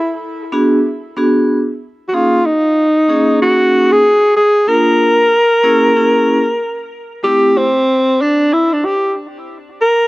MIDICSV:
0, 0, Header, 1, 3, 480
1, 0, Start_track
1, 0, Tempo, 638298
1, 1595, Time_signature, 4, 2, 24, 8
1, 7577, End_track
2, 0, Start_track
2, 0, Title_t, "Alto saxophone"
2, 0, Program_c, 0, 65
2, 0, Note_on_c, 0, 64, 78
2, 163, Note_off_c, 0, 64, 0
2, 1566, Note_on_c, 0, 66, 70
2, 1613, Note_on_c, 0, 65, 83
2, 1624, Note_off_c, 0, 66, 0
2, 1851, Note_on_c, 0, 63, 87
2, 1862, Note_off_c, 0, 65, 0
2, 2563, Note_off_c, 0, 63, 0
2, 2571, Note_on_c, 0, 66, 93
2, 2947, Note_on_c, 0, 68, 109
2, 2959, Note_off_c, 0, 66, 0
2, 3277, Note_off_c, 0, 68, 0
2, 3282, Note_on_c, 0, 68, 100
2, 3521, Note_on_c, 0, 70, 100
2, 3533, Note_off_c, 0, 68, 0
2, 5198, Note_off_c, 0, 70, 0
2, 5441, Note_on_c, 0, 67, 97
2, 5696, Note_on_c, 0, 60, 86
2, 5707, Note_off_c, 0, 67, 0
2, 6177, Note_on_c, 0, 62, 85
2, 6189, Note_off_c, 0, 60, 0
2, 6417, Note_on_c, 0, 64, 90
2, 6428, Note_off_c, 0, 62, 0
2, 6565, Note_on_c, 0, 62, 76
2, 6577, Note_off_c, 0, 64, 0
2, 6655, Note_on_c, 0, 67, 78
2, 6667, Note_off_c, 0, 62, 0
2, 6885, Note_off_c, 0, 67, 0
2, 7382, Note_on_c, 0, 70, 91
2, 7577, Note_off_c, 0, 70, 0
2, 7577, End_track
3, 0, Start_track
3, 0, Title_t, "Vibraphone"
3, 0, Program_c, 1, 11
3, 392, Note_on_c, 1, 59, 78
3, 394, Note_on_c, 1, 62, 77
3, 396, Note_on_c, 1, 66, 68
3, 403, Note_on_c, 1, 68, 85
3, 579, Note_off_c, 1, 59, 0
3, 579, Note_off_c, 1, 62, 0
3, 580, Note_off_c, 1, 66, 0
3, 584, Note_off_c, 1, 68, 0
3, 876, Note_on_c, 1, 59, 75
3, 878, Note_on_c, 1, 62, 72
3, 882, Note_on_c, 1, 66, 74
3, 884, Note_on_c, 1, 68, 82
3, 1175, Note_off_c, 1, 59, 0
3, 1176, Note_off_c, 1, 62, 0
3, 1178, Note_off_c, 1, 66, 0
3, 1179, Note_off_c, 1, 68, 0
3, 1599, Note_on_c, 1, 58, 61
3, 1601, Note_on_c, 1, 61, 47
3, 1605, Note_on_c, 1, 63, 54
3, 1607, Note_on_c, 1, 68, 67
3, 1782, Note_off_c, 1, 58, 0
3, 1783, Note_off_c, 1, 61, 0
3, 1785, Note_off_c, 1, 63, 0
3, 1786, Note_off_c, 1, 68, 0
3, 2317, Note_on_c, 1, 58, 68
3, 2320, Note_on_c, 1, 61, 61
3, 2323, Note_on_c, 1, 63, 58
3, 2328, Note_on_c, 1, 68, 76
3, 2999, Note_off_c, 1, 58, 0
3, 3001, Note_off_c, 1, 61, 0
3, 3002, Note_off_c, 1, 63, 0
3, 3005, Note_off_c, 1, 68, 0
3, 3513, Note_on_c, 1, 58, 59
3, 3517, Note_on_c, 1, 62, 55
3, 3517, Note_on_c, 1, 65, 57
3, 3522, Note_on_c, 1, 70, 63
3, 3872, Note_off_c, 1, 58, 0
3, 3874, Note_off_c, 1, 62, 0
3, 3875, Note_off_c, 1, 65, 0
3, 3877, Note_off_c, 1, 70, 0
3, 4235, Note_on_c, 1, 58, 72
3, 4238, Note_on_c, 1, 61, 69
3, 4240, Note_on_c, 1, 64, 74
3, 4243, Note_on_c, 1, 68, 88
3, 4420, Note_off_c, 1, 58, 0
3, 4421, Note_off_c, 1, 61, 0
3, 4422, Note_off_c, 1, 64, 0
3, 4424, Note_off_c, 1, 68, 0
3, 4481, Note_on_c, 1, 58, 64
3, 4482, Note_on_c, 1, 61, 63
3, 4484, Note_on_c, 1, 64, 61
3, 4487, Note_on_c, 1, 68, 76
3, 4777, Note_off_c, 1, 58, 0
3, 4778, Note_off_c, 1, 61, 0
3, 4779, Note_off_c, 1, 64, 0
3, 4780, Note_off_c, 1, 68, 0
3, 5435, Note_on_c, 1, 57, 51
3, 5438, Note_on_c, 1, 60, 51
3, 5441, Note_on_c, 1, 64, 56
3, 5444, Note_on_c, 1, 67, 60
3, 5734, Note_off_c, 1, 57, 0
3, 5736, Note_off_c, 1, 60, 0
3, 5737, Note_off_c, 1, 64, 0
3, 5739, Note_off_c, 1, 67, 0
3, 7577, End_track
0, 0, End_of_file